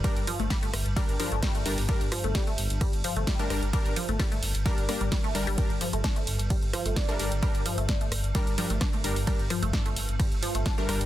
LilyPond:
<<
  \new Staff \with { instrumentName = "Supersaw synth" } { \time 4/4 \key g \minor \tempo 4 = 130 <g d' bes'>8 r4. <g d' bes'>8 <g d' bes'>16 r8. <g d' bes'>16 r16 | <g d' bes'>16 r2. <g d' bes'>16 <g d' bes'>16 r16 | <g d' bes'>8 r4. <g d' bes'>8 <g d' bes'>16 r8. <g d' bes'>16 r16 | <g d' bes'>16 r2. <g d' bes'>16 <g d' bes'>16 r16 |
<g d' bes'>8 r4. <g d' bes'>8 <g d' bes'>16 r8. <g d' bes'>16 r16 | <g d' bes'>16 r2. <g d' bes'>16 <g d' bes'>16 r16 | }
  \new Staff \with { instrumentName = "Synth arpeggio sound" } { \clef bass \time 4/4 \key g \minor g16 r16 f16 a16 g16 a16 r8 g16 r16 f16 a16 g16 a16 r8 | g16 r16 f16 a16 g16 a16 r8 g16 r16 f16 a16 g16 a16 r8 | g16 r16 f16 a16 g16 a16 r8 g16 r16 bes16 g16 g16 a16 r16 g16 | g16 r16 f16 a16 d'16 a16 r8 g16 r16 f16 a16 d'16 a16 r8 |
g16 r16 f16 a16 d'16 a16 r8 g16 r16 f16 a16 d'16 a16 r8 | g16 r16 f16 a16 d'16 a16 r8 g16 r16 f16 a16 d'16 a16 r8 | }
  \new Staff \with { instrumentName = "Synth drone" } { \clef bass \time 4/4 \key g \minor g,1~ | g,1~ | g,1 | g,1~ |
g,1~ | g,1 | }
  \new Staff \with { instrumentName = "Detuned saw bass" } { \clef bass \time 4/4 \key g \minor r16 g,,16 r16 g,,16 r8 g,,16 g,,16 r16 g,,16 r16 g,,16 r8 g,,16 g,,16 | r16 g,,16 r16 g,,16 r8 g,,16 g,,16 r16 g,,16 r16 g,,16 r8 g,,16 g,,16 | r16 g,,16 r16 g,,16 r8 g,,16 g,,16 r16 g,,16 r16 g,,16 r8 g,,16 g,,16 | r16 g,,16 r16 g,,16 r8 g,,16 g,,16 r16 g,,16 r16 g,,16 r8 g,,16 g,,16 |
r16 g,,16 r16 g,,16 r8 g,,16 g,,16 r16 g,,16 r16 g,,16 r8 g,,16 g,,16 | r16 g,,16 r16 g,,16 r8 g,,16 g,,16 r16 g,,16 r16 g,,16 r8 g,,16 g,,16 | }
  \new DrumStaff \with { instrumentName = "Drums" } \drummode { \time 4/4 <hh bd cymr ss>16 hh16 hho16 hh16 <hh bd cymr sn>16 hh16 <hho ss>16 hh16 <hh bd cymr sn>16 hh16 hho16 hh16 <hh bd cymr ss sn>16 hh16 hho16 hho16 | <hh bd cymr>16 hh16 <hho ss>16 hh16 <hh bd cymr sn>16 hh16 hho16 hh16 <hh bd cymr ss>16 hh16 hho16 hh16 <hh bd cymr sn>16 hh16 <hho ss>16 hh16 | <hh bd cymr>16 hh16 hho16 hh16 <hh bd cymr ss sn>16 hh16 hho16 hh16 <hh bd cymr sn>16 hh16 <hho ss>16 hh16 <hh bd cymr sn>16 hh16 hho16 hho16 | <hh bd cymr>16 hh16 hho16 hh16 <hh bd cymr ss sn>16 hh16 hho16 hh16 <hh bd cymr>16 hh16 <hho ss>16 hh16 <hh bd cymr sn>16 hh16 hho16 hh16 |
<hh bd cymr ss>16 hh16 hho16 hh16 <hh bd cymr sn>16 hh16 <hho ss>16 hh16 <hh bd cymr sn>16 hh16 hho16 hh16 <hh bd cymr ss sn>16 hh16 hho16 hho16 | <hh bd cymr>16 hh16 <hho ss>16 hh16 <hh bd cymr sn>16 hh16 hho16 hh16 <hh bd cymr ss>16 hh16 hho16 hh16 <hh bd cymr sn>16 hh16 <hho ss>16 hh16 | }
>>